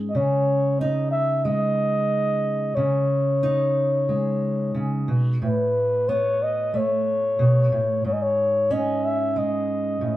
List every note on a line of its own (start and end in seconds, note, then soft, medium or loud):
0.00 0.15 G#2 soft
0.00 1.45 G#3 soft
0.00 0.81 C#4 soft
0.10 0.18 D#5 medium
0.15 2.75 C#3 medium
0.15 0.80 C#5 medium
0.81 2.73 D#4 medium
0.81 1.11 D#5 medium
1.11 1.46 E5 medium
1.45 2.73 G#3 soft
1.45 2.77 D#5 medium
2.75 4.73 C#3 soft
2.75 4.74 C#5 medium
3.43 5.38 D#4 soft
4.09 5.38 G#3 soft
4.75 5.08 C#3 soft
5.08 5.41 B2 soft
5.42 7.39 A2 soft
5.42 6.10 B4 medium
6.09 8.05 B3 soft
6.09 6.44 C#5 medium
6.43 6.78 D#5 medium
6.74 8.01 A3 soft
6.74 8.06 C#5 medium
7.39 7.72 B2 medium
7.72 8.04 A2 soft
8.05 10.01 G#2 soft
8.05 8.14 C#5 medium
8.13 8.24 D#5 medium
8.22 8.73 C#5 medium
8.71 10.17 C#4 soft
8.71 9.06 D#5 medium
9.05 9.40 E5 medium
9.36 10.17 G#3 soft
9.36 10.17 D#5 medium
10.01 10.17 A2 soft